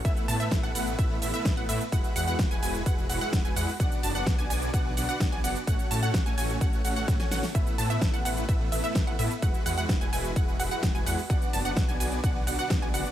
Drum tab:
RD |x-x-x-x-x-x-x-x-|x-x-x-x-x-x-x-x-|x-x-x-x-x-x-x-x-|x-x-x-x-x-x-x-x-|
HH |xxoxxxoxx-oxxxox|xxoxxxoxx-oxxxoo|xxoxxxoxx-oxxxox|xxoxxxoxxxoxxxoo|
SH |xxxxxxxxx-xxx-xx|xxxxxxxxxxxxxxxx|xxxxxxxxx-xxx-xx|xxxxxxxxxxxxxxxx|
SD |----o-------o---|----o-------o---|----o-------o---|----o-------oooo|
BD |o---o---o---o---|o---o---o---o---|o---o---o---o---|o---o---o---o---|

RD |x-x-x-x-x-x-x-x-|x-x-x-x-x-x-x-x-|x-x-x-x-x-x-x-x-|
HH |xxoxxxoxx-oxxxox|xxoxxxoxx-oxxxoo|xxoxxxoxx-oxxxox|
SH |xxxxxxxxx-xxx-xx|xxxxxxxxxxxxxxxx|xxxxxxxxx-xxx-xx|
SD |----o-------o---|----o-------o---|----o-------o---|
BD |o---o---o---o---|o---o---o---o---|o---o---o---o---|